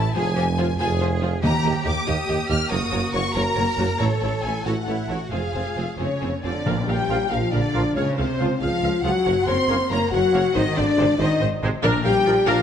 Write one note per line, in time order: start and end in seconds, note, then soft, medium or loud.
0.00 0.11 A3 medium
0.00 0.11 E4 medium
0.00 0.15 E4 medium
0.00 0.15 A5 loud
0.15 0.72 F1 medium
0.15 0.71 F2 medium
0.15 0.24 F3 medium
0.15 1.39 C4 medium
0.15 1.39 F4 medium
0.15 0.24 F4 medium
0.15 0.36 G#4 medium
0.15 0.23 G#4 medium
0.15 0.23 C5 medium
0.15 0.77 G#5 loud
0.36 0.45 F3 medium
0.36 0.45 F4 medium
0.36 0.44 G4 medium
0.36 0.44 G#4 medium
0.36 0.44 C5 medium
0.57 0.66 F3 medium
0.57 0.66 F4 medium
0.57 0.65 G#4 medium
0.57 0.66 C5 medium
0.79 1.36 F1 loud
0.79 1.36 F2 medium
0.79 0.88 F3 medium
0.79 0.88 F4 medium
0.79 0.87 G#4 medium
0.79 1.42 G#4 medium
0.79 0.87 C5 medium
0.79 1.00 G#5 loud
1.00 1.09 F3 medium
1.00 1.09 F4 medium
1.00 1.08 G#4 medium
1.00 1.09 C5 medium
1.22 1.30 F3 medium
1.22 1.30 F4 medium
1.22 1.30 G#4 medium
1.22 1.30 C5 medium
1.43 1.51 D#2 medium
1.43 1.52 D#2 medium
1.43 2.03 D#3 loud
1.43 1.52 A#3 medium
1.43 3.97 A#3 loud
1.43 1.51 G4 medium
1.43 2.06 G4 loud
1.43 2.67 G4 loud
1.43 1.52 G4 medium
1.43 1.51 D#5 medium
1.43 1.83 A#5 loud
1.64 1.73 D#2 medium
1.64 1.74 A#3 medium
1.64 1.73 G4 medium
1.64 1.74 G4 medium
1.64 1.72 D#5 medium
1.85 1.94 D#2 medium
1.85 1.94 A#3 medium
1.85 1.93 G4 medium
1.85 1.94 G4 medium
1.85 1.93 D#5 medium
1.85 2.07 D6 loud
2.07 2.16 D#2 medium
2.07 2.15 D#2 medium
2.07 2.15 A#3 medium
2.07 2.15 G4 medium
2.07 2.70 G4 loud
2.07 2.15 D#5 medium
2.07 2.50 D#6 loud
2.28 2.36 D#2 medium
2.28 2.37 D#2 medium
2.28 2.36 A#3 medium
2.28 2.36 G4 medium
2.28 2.37 G4 medium
2.28 2.37 D#5 medium
2.49 2.58 D#2 medium
2.49 2.58 A#3 medium
2.49 2.58 G4 medium
2.49 2.58 D#5 medium
2.49 2.70 F6 loud
2.70 2.79 F#1 loud
2.70 2.79 F#1 medium
2.70 2.80 A#3 medium
2.70 3.96 F#4 medium
2.70 3.36 F#4 medium
2.70 2.80 F#4 medium
2.70 2.78 A#4 medium
2.70 2.78 C#5 medium
2.70 3.12 D#6 loud
2.91 3.01 F#1 medium
2.91 3.01 A#3 medium
2.91 3.01 F#4 medium
2.91 3.00 A#4 medium
2.91 2.99 C#5 medium
3.13 3.22 F#1 medium
3.13 3.22 A#3 medium
3.13 3.23 F#4 medium
3.13 3.21 A#4 medium
3.13 3.22 C#5 medium
3.13 3.35 C#6 loud
3.35 3.44 F#1 medium
3.35 3.43 F#1 medium
3.35 3.44 A#3 medium
3.35 3.44 F#4 medium
3.35 3.43 A#4 medium
3.35 3.99 A#4 loud
3.35 3.43 C#5 medium
3.35 4.00 A#5 loud
3.55 3.65 F#1 medium
3.55 3.66 A#3 medium
3.55 3.67 F#4 medium
3.55 3.63 A#4 medium
3.55 3.63 C#5 medium
3.78 3.86 F#1 medium
3.78 3.87 F#1 medium
3.78 3.87 A#3 medium
3.78 3.87 F#4 medium
3.78 3.86 A#4 medium
3.78 3.86 C#5 medium
3.98 4.09 A1 medium
3.98 4.08 A1 medium
3.98 5.16 A3 medium
3.98 4.09 A3 medium
3.98 5.16 E4 medium
3.98 4.09 E4 medium
3.98 4.06 A4 medium
3.98 4.66 A4 medium
3.98 4.06 C#5 medium
3.98 4.44 C#5 loud
4.21 4.30 A1 medium
4.21 4.31 A3 medium
4.21 4.32 E4 medium
4.21 4.29 A4 medium
4.21 4.29 C#5 medium
4.43 4.52 A1 medium
4.43 4.54 A3 medium
4.43 4.54 E4 medium
4.43 4.51 A4 medium
4.43 4.51 C#5 medium
4.43 4.66 G#5 medium
4.65 4.73 A1 medium
4.65 4.74 A1 medium
4.65 4.75 A3 medium
4.65 4.75 E4 medium
4.65 4.74 F#4 medium
4.65 4.73 A4 medium
4.65 4.73 C#5 medium
4.65 5.32 F#5 medium
4.86 4.96 A1 medium
4.86 4.97 A3 medium
4.86 5.10 E4 medium
4.86 4.97 E4 medium
4.86 4.94 A4 medium
4.86 4.94 C#5 medium
5.08 5.18 A1 medium
5.08 5.17 A1 medium
5.08 5.19 A3 medium
5.08 5.19 E4 medium
5.08 5.32 F#4 medium
5.08 5.17 A4 medium
5.08 5.16 C#5 medium
5.31 5.40 F1 medium
5.31 5.41 F1 medium
5.31 5.91 G#3 medium
5.31 5.41 C4 medium
5.31 5.41 F4 medium
5.31 5.91 F4 medium
5.31 5.39 G#4 medium
5.31 5.98 G#4 medium
5.31 5.39 C5 medium
5.31 5.97 F5 medium
5.53 5.62 F1 medium
5.53 5.64 F1 medium
5.53 5.64 C4 medium
5.53 5.64 F4 medium
5.53 5.61 G#4 medium
5.53 5.61 C5 medium
5.76 5.86 F1 medium
5.76 5.85 F1 medium
5.76 5.85 C4 medium
5.76 5.85 F4 soft
5.76 5.84 G#4 soft
5.76 5.84 C5 medium
5.98 6.07 F1 medium
5.98 6.08 F1 medium
5.98 6.41 C#3 medium
5.98 6.20 G#3 medium
5.98 6.08 C4 soft
5.98 6.41 C#4 medium
5.98 6.08 F4 soft
5.98 6.06 G#4 medium
5.98 6.06 C5 medium
5.98 6.40 C#5 medium
5.98 6.41 C#5 medium
6.21 6.30 F1 medium
6.21 6.44 A#3 medium
6.21 6.31 C4 soft
6.21 6.30 F4 soft
6.21 6.29 G#4 soft
6.21 6.29 C5 soft
6.43 6.53 F1 medium
6.43 6.52 F1 medium
6.43 6.87 D3 medium
6.43 6.65 C4 medium
6.43 6.52 C4 medium
6.43 6.87 D4 medium
6.43 6.53 F4 soft
6.43 6.52 G#4 soft
6.43 6.52 C5 soft
6.43 6.88 D5 medium
6.66 6.75 A#1 medium
6.66 7.27 A#2 loud
6.66 6.74 A#4 medium
6.66 6.74 F5 medium
6.87 6.97 A#1 medium
6.87 6.96 A#1 medium
6.87 7.31 G3 medium
6.87 7.30 G4 loud
6.87 6.96 A#4 medium
6.87 6.96 F5 medium
6.87 7.30 G5 medium
6.87 7.32 G5 medium
7.09 7.18 A#1 medium
7.09 7.17 F3 medium
7.09 7.17 F4 medium
7.09 7.17 A#4 medium
7.09 7.17 F5 medium
7.31 7.40 A#1 medium
7.31 7.52 F3 medium
7.31 7.53 F4 medium
7.31 7.39 A#4 medium
7.31 7.39 F5 medium
7.31 7.53 F5 medium
7.52 7.61 A#1 medium
7.52 7.62 A#1 medium
7.52 7.95 D3 medium
7.52 7.96 D4 loud
7.52 7.61 A#4 medium
7.52 7.95 D5 medium
7.52 7.96 D5 medium
7.52 7.95 D5 medium
7.52 7.61 F5 medium
7.74 7.83 A#1 medium
7.74 7.83 F3 medium
7.74 7.82 F4 medium
7.74 7.82 A#4 medium
7.74 7.82 F5 medium
7.95 8.05 C#2 medium
7.95 8.18 C#3 medium
7.95 8.18 C#4 loud
7.95 8.04 G#4 medium
7.95 8.01 C#5 medium
7.95 8.17 C#5 medium
7.95 8.04 F5 medium
8.16 8.26 C#2 medium
8.16 8.61 C3 medium
8.16 8.60 C4 medium
8.16 8.26 G#4 medium
8.16 8.59 C5 medium
8.16 8.60 C5 medium
8.16 8.27 F5 medium
8.39 8.48 C#2 medium
8.39 8.48 F3 medium
8.39 8.48 F4 medium
8.39 8.48 G#4 medium
8.39 8.48 F5 medium
8.60 8.70 C#2 medium
8.60 8.69 C#2 medium
8.60 9.03 F3 medium
8.60 9.05 F4 loud
8.60 8.70 G#4 medium
8.60 9.03 F5 loud
8.60 9.03 F5 medium
8.60 9.04 F5 medium
8.60 8.70 F5 medium
8.82 8.91 C#2 medium
8.82 8.90 C#2 medium
8.82 8.91 G#4 medium
8.82 8.91 F5 medium
9.03 9.13 C#2 medium
9.03 9.12 C#2 medium
9.03 9.11 F3 medium
9.03 9.47 F#3 medium
9.03 9.12 F4 medium
9.03 9.47 F#4 loud
9.03 9.12 G#4 medium
9.03 9.12 F5 medium
9.03 9.47 F#5 medium
9.03 9.46 F#5 medium
9.03 9.48 F#5 medium
9.25 9.34 F#1 medium
9.25 9.34 A#4 medium
9.25 9.34 C#5 medium
9.46 9.56 F#1 medium
9.46 9.55 F#1 medium
9.46 9.90 C4 medium
9.46 9.55 A#4 medium
9.46 9.90 C5 loud
9.46 9.55 C#5 medium
9.46 9.90 C6 medium
9.46 9.89 C6 loud
9.46 9.91 C6 loud
9.68 9.77 F#1 medium
9.68 9.76 C#3 medium
9.68 9.76 A#3 medium
9.68 9.77 A#4 medium
9.68 9.77 C#5 medium
9.90 9.99 F#1 medium
9.90 10.12 A#3 medium
9.90 10.12 A#4 loud
9.90 10.00 A#4 medium
9.90 9.99 C#5 medium
9.90 10.12 A#5 medium
10.11 10.20 F#1 medium
10.11 10.55 F#3 medium
10.11 10.54 F#4 loud
10.11 10.21 A#4 medium
10.11 10.21 C#5 medium
10.11 10.54 F#5 loud
10.11 10.54 F#5 medium
10.11 10.55 F#5 medium
10.32 10.42 F#1 medium
10.32 10.40 C#3 medium
10.32 10.41 A#3 medium
10.32 10.42 A#4 medium
10.32 10.42 C#5 medium
10.54 10.63 G#1 medium
10.54 10.64 G#1 medium
10.54 10.77 D#3 loud
10.54 10.65 D#4 loud
10.54 10.63 C5 medium
10.54 10.76 D#5 loud
10.54 10.77 D#5 loud
10.76 10.85 G#1 medium
10.76 11.19 D3 medium
10.76 11.19 D4 loud
10.76 10.85 C5 medium
10.76 11.19 D5 loud
10.76 11.20 D5 loud
10.76 11.20 D5 medium
10.98 11.06 G#1 medium
10.98 11.07 G#1 medium
10.98 11.05 C3 medium
10.98 11.06 G#3 medium
10.98 11.06 C5 medium
11.18 11.27 G#1 loud
11.18 11.28 G#1 medium
11.18 11.40 D#3 loud
11.18 11.40 D#4 loud
11.18 11.29 C5 medium
11.18 11.41 D#5 loud
11.18 11.41 D#5 medium
11.39 11.48 G#1 medium
11.39 11.49 G#1 medium
11.39 11.49 C5 medium
11.62 11.70 G#1 medium
11.62 11.70 C3 medium
11.62 11.70 G#3 loud
11.62 11.71 C5 medium
11.83 11.92 A#1 loud
11.83 11.91 A#1 loud
11.83 12.44 A#2 loud
11.83 12.03 D4 loud
11.83 12.03 A#4 loud
12.04 12.13 A#1 medium
12.04 12.44 G3 loud
12.04 12.45 G4 loud
12.04 12.13 A#4 medium
12.04 12.13 F5 medium
12.04 12.44 G5 loud
12.04 12.45 G5 loud
12.26 12.34 A#1 medium
12.26 12.35 A#1 medium
12.26 12.34 F3 loud
12.26 12.34 A#3 medium
12.26 12.34 F4 medium
12.26 12.34 D5 medium
12.47 12.56 A#1 loud
12.47 12.62 F3 loud
12.47 12.62 D4 loud
12.47 12.62 F4 loud
12.47 12.62 A#4 loud
12.47 12.62 F5 loud
12.47 12.62 F5 medium
12.47 12.62 F5 loud